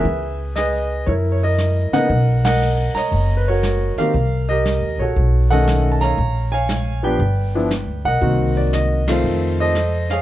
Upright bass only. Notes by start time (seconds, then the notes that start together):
0.05 C#2
1.07 F#2
1.91 muted upright bass stroke
2.10 B1
2.94 muted upright bass stroke
3.12 F#1
4.14 C2
4.81 D#2
4.98 A#1
5.16 B1
6.18 A#1
7.19 G1
7.87 D2
8.05 B1
8.21 C2
9.23 F2